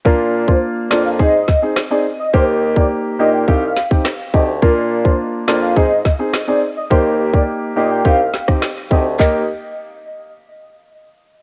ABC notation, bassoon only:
X:1
M:4/4
L:1/8
Q:1/4=105
K:Eb
V:1 name="Bassoon" clef=bass
B,,2 z F,, A,, z3 | E,,2 z B,, C,, z2 D,, | B,,2 z F,, A,, z3 | E,,2 z B,, C,, z2 D,, |
E,, z6 z |]